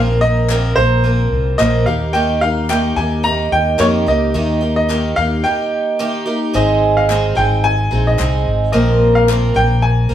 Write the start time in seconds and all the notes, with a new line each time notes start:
Already playing: A#1 A#2 F3 A#3 C4 A#4
0.21 A#3 C4 A#4 D#5
0.50 A#2 F3 A#3 C4 A#4, clap
0.76 A#1 A#3 C4 A#4 C5
1.04 F3 A#3 C4 A#4
1.31 C2
1.58 A#1 A#2 F3 A#3 C4 A#4 D#5, clap
1.86 D#2 A#3 D#4 G4 F5
2.13 D#3 A#3 D#4 G4 G5
2.41 A#3 D#4 G4 F5
2.69 D#3 A#3 D#4 G4 G5, clap
2.96 D#2 A#3 D#4 G4 G#5
3.23 D#3 A#3 D#4 G4 A#5
3.52 D#2 G5
3.78 F2 D#3 A#3 D#4 G4 C#5, clap
4.06 C#2 A#3 D#4 G4 D#5
4.34 D#2 D#3 A#3 D#4 G4
4.61 A#3 D#4 G4
4.76 D#5
4.89 D#3 A#3 D#4 G4, clap
5.16 D#2 A#3 D#4 G4 F5
5.44 D#3 A#3 D#4 G4 G5
5.99 D#3 A#3 D#4 G4
6.26 A#3 D#4 G4
6.54 G#1 G#2 D#3 G#3 C4 D#4 G#4 D#5
6.97 F5
7.09 G#3 C4 D#4 G#4, clap
7.35 G#1 G#3 C4 D#4 G#4 G5
7.64 G#5
7.91 A#1 G#3 C4 D#4 G#4
8.07 D#5
8.18 C2 G#3 C4 D#4 G#4, clap
8.47 G#1
8.72 A#1 A#2 F3 A#3 C4 A#4 D#5
9.15 F5
9.28 F3 A#3 C4 A#4, clap
9.54 A#1 A#3 C4 A#4 G5
9.82 G#5
10.09 C2 A#3 C4 A#4